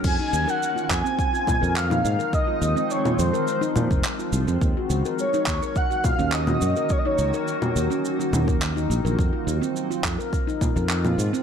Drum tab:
CC |x---------------|----------------|----------------|----------------|
SH |x-xxxxxxxxxxxxxx|x-xxxxxxxxxxxxxx|x-xxxxxxxxxxxxxx|x-xxxxxxxxxxxxxx|
CP |------x-----x---|------------x---|------x-----x---|------------x---|
CG |----------O--O--|-----O----O-----|----------O--O--|-----O----O-----|
BD |o-----o-o-o-----|o----------o----|o-----o-o-o-----|o----------o----|

CC |----------------|
SH |x-xxxxxxxxxxxxxx|
CP |------x-----x---|
CG |----------O--O--|
BD |o-----o-o-o-----|